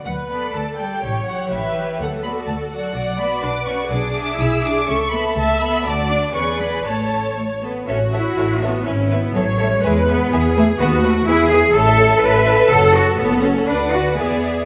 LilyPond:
<<
  \new Staff \with { instrumentName = "Violin section" } { \time 2/4 \key d \major \tempo 4 = 123 fis''8 b''8 a''8 g''8~ | g''8 fis''8 e''4 | fis''8 b''8 a''8 fis''8~ | fis''8 b''8 d'''8 cis'''8 |
\key a \major d'''4 e'''8 d'''8 | cis'''8 b''8 a''8 b''8 | a''8 d'''8 cis'''8 b''8 | a''4 r4 |
e''8 e''8 e''8 e''8 | e''8 e''8 e''8 e''8 | e''8 e''8 e''8 e''8 | fis''8 fis''8 e''8 e''8 |
a''16 e''16 a''16 e''16 a''16 e''16 a''16 e''16 | a''16 fis''16 a''16 fis''16 a''16 fis''16 a''16 fis''16 | fis''4 e''4 | }
  \new Staff \with { instrumentName = "Viola section" } { \time 2/4 \key d \major b'4 a'4 | cis''4 b'4 | a'2 | d''4 b'4 |
\key a \major gis'2 | a'4 e''4 | d''4 b'4 | cis''4. r8 |
fis'2 | e'4 cis''4 | b'4 gis'4 | fis'4 gis'4 |
a'2~ | a'2 | b'4 gis'4 | }
  \new Staff \with { instrumentName = "Violin section" } { \time 2/4 \key d \major r8 <a' d''>4 <a' d''>8 | <g' cis''>8 <g' cis''>4 <g' cis''>8 | r8 <fis' d''>4 <fis' d''>8 | <fis' d''>8 <fis' d''>4 <fis' d''>8 |
\key a \major r8 <gis' e''>4 <gis' e''>8 | <a' e''>8 <a' e''>4 <a' e''>8 | <fis' d''>4 <gis' d''>4 | <a' cis''>4 cis''8 a'8 |
<a' cis''>8 <a' cis''>8 <a' cis''>8 <a' cis''>8 | b'8 b'8 <a' cis''>8 <a' cis''>8 | <gis' b'>8 <gis' b'>8 <gis' b'>8 <gis' b'>8 | b'8 b'8 <gis' b'>8 <gis' b'>8 |
<e' cis''>16 <a' e''>16 <e' cis''>16 <a' e''>16 <e' cis''>16 <a' e''>16 <e' cis''>16 <a' e''>16 | <fis' cis''>16 a'16 <fis' cis''>16 a'16 <fis' cis''>16 a'16 <fis' cis''>16 a'16 | <b' d''>4 <gis' d''>4 | }
  \new Staff \with { instrumentName = "Cello section" } { \time 2/4 \key d \major fis8 b8 a8 g8~ | g8 fis8 e4 | fis8 b8 a8 fis8~ | fis8 b8 d'8 cis'8 |
\key a \major d'4 e'8 d'8 | cis'8 b8 a8 b8 | a8 d'8 cis'8 b8 | a4 a8 b8 |
cis'8 e'4 b8 | cis'8 b8 fis8 g8 | gis8 b4 a8 | b8 a8 e'8 gis'8 |
a'4 b'4 | a'8 fis'8 b8 cis'8 | d'8 fis'8 b4 | }
  \new Staff \with { instrumentName = "Double bass section" } { \clef bass \time 2/4 \key d \major d,4 d,4 | a,,4 a,,4 | d,4 d,4 | b,,4 b,,4 |
\key a \major b,,4 b,,4 | cis,4 cis,4 | d,4 e,4 | a,,4. r8 |
a,,4 a,,4 | gis,,4 a,,4 | e,4 e,4 | dis,4 e,4 |
a,,4 a,,4 | fis,,4 fis,,4 | d,4 e,4 | }
>>